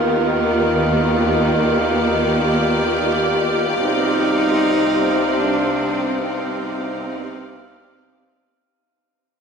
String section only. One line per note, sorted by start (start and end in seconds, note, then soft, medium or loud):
0.00 3.79 D#3 medium
0.00 8.55 B3 medium
0.00 4.98 F4 medium
0.00 8.55 G4 medium
0.00 0.67 A#4 medium
0.39 8.55 D5 medium
3.79 8.55 C3 medium
3.85 8.55 C4 medium